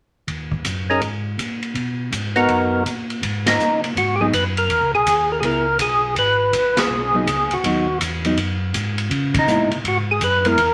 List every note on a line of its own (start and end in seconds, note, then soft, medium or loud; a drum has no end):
0.27 0.63 D#2 medium
0.27 kick soft
0.27 ride soft
0.52 kick soft
0.65 1.00 F#2 medium
0.65 kick soft
0.65 hi-hat pedal soft
0.65 ride medium
0.90 1.01 C#4 medium
0.90 1.01 D#4 soft
0.90 1.01 G#4 soft
0.90 1.01 A#4 medium
1.01 1.37 G#2 medium
1.01 kick soft
1.01 ride soft
1.38 1.74 A#2 medium
1.38 kick soft
1.38 hi-hat pedal soft
1.38 ride soft
1.63 ride soft
1.75 2.11 B2 medium
1.75 kick soft
1.75 ride soft
2.12 2.47 G#2 medium
2.12 kick soft
2.12 hi-hat pedal medium
2.12 ride medium
2.36 2.83 B3 medium
2.36 2.83 D#4 medium
2.36 2.83 F#4 medium
2.36 2.83 A#4 medium
2.36 ride soft
2.49 2.84 F#2 medium
2.49 kick soft
2.49 ride soft
2.86 3.21 A#2 medium
2.86 kick soft
2.86 hi-hat pedal soft
2.86 ride soft
3.10 ride soft
3.23 3.58 G#2 medium
3.23 kick soft
3.23 ride medium
3.46 3.81 D#4 medium
3.46 snare medium
3.46 ride medium
3.59 3.95 A#2 medium
3.59 hi-hat pedal soft
3.84 ride soft
3.96 4.32 G#2 medium
3.96 4.15 F#4 medium
3.96 kick soft
3.96 ride soft
4.15 4.20 G4 medium
4.20 4.32 F#3 medium
4.20 4.32 B3 medium
4.20 4.32 D#4 medium
4.20 4.26 G#4 medium
4.33 4.68 F#2 medium
4.33 4.44 B4 medium
4.33 kick soft
4.33 hi-hat pedal soft
4.33 ride medium
4.57 4.91 A#4 medium
4.57 ride soft
4.69 4.81 E2 medium
4.69 kick soft
4.69 ride soft
4.81 4.94 C#2 soft
4.94 5.05 B1 medium
4.94 5.32 G#4 loud
5.06 5.42 D#2 medium
5.06 kick soft
5.06 hi-hat pedal medium
5.06 ride medium
5.32 5.39 A#4 medium
5.40 5.78 C#2 medium
5.40 5.64 B3 soft
5.40 5.65 E4 soft
5.40 5.44 G#4 medium
5.40 5.65 G#4 medium
5.40 kick soft
5.40 ride medium
5.45 5.78 A#4 medium
5.79 6.15 B1 medium
5.79 6.15 G#4 medium
5.79 kick soft
5.79 hi-hat pedal medium
5.79 ride medium
6.16 6.52 G#1 medium
6.16 6.80 B4 loud
6.16 kick soft
6.16 ride medium
6.53 6.89 A#1 medium
6.53 kick soft
6.53 hi-hat pedal medium
6.53 ride medium
6.77 7.54 G#4 medium
6.77 snare medium
6.77 ride medium
6.89 7.25 B1 medium
7.14 7.26 F#3 medium
7.14 7.26 B3 medium
7.14 7.26 D#4 medium
7.26 7.49 C#2 medium
7.26 kick soft
7.26 hi-hat pedal soft
7.26 ride medium
7.50 7.57 C#2 soft
7.50 7.98 F#4 medium
7.50 ride soft
7.64 7.99 D#2 medium
7.64 7.85 F#3 medium
7.64 7.86 B3 medium
7.64 7.86 D#4 medium
7.64 kick soft
7.64 ride medium
8.00 8.36 E2 medium
8.00 kick soft
8.00 hi-hat pedal soft
8.00 ride medium
8.25 8.36 F#3 medium
8.25 8.37 B3 medium
8.25 8.37 D#4 medium
8.25 ride soft
8.37 8.73 F#2 medium
8.37 kick soft
8.37 ride medium
8.74 9.10 G#2 medium
8.74 kick soft
8.74 hi-hat pedal medium
8.74 ride medium
8.98 ride soft
9.10 9.46 C#3 medium
9.10 kick soft
9.10 ride soft
9.34 kick medium
9.34 ride medium
9.39 9.71 D#4 medium
9.47 9.69 A#2 medium
9.47 9.69 G#3 medium
9.47 9.69 B3 medium
9.47 9.69 E4 medium
9.47 hi-hat pedal medium
9.71 9.77 A#2 soft
9.71 ride soft
9.84 10.20 G#2 medium
9.84 9.98 F#4 medium
9.84 kick soft
9.84 ride medium
10.11 10.23 G#4 medium
10.21 10.57 F#2 medium
10.21 10.47 B4 medium
10.21 kick soft
10.21 hi-hat pedal medium
10.21 ride medium
10.45 10.57 G#3 medium
10.45 10.57 B3 medium
10.45 10.57 E4 medium
10.45 10.74 A#4 loud
10.45 ride soft
10.57 10.74 E2 medium
10.57 kick soft
10.57 ride medium